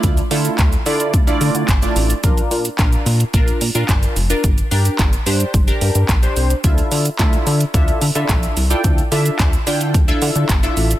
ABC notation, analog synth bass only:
X:1
M:4/4
L:1/16
Q:1/4=109
K:Dm
V:1 name="Analog synth bass" clef=bass
D,,2 D,2 D,,2 D,2 D,,2 D, D, G,,,2 A,,,2 | B,,,2 B,,2 B,,,2 B,,2 B,,,2 B,, B,, G,,,2 F,,,2 | G,,,2 G,,2 G,,,2 G,,2 G,,,2 G,, G,, B,,,2 C,,2 | D,,2 D,2 D,,2 D,2 D,,2 D, D, B,,,2 C,,2 |
D,,2 D,2 D,,2 D,2 D,,2 D, D, G,,,2 A,,,2 |]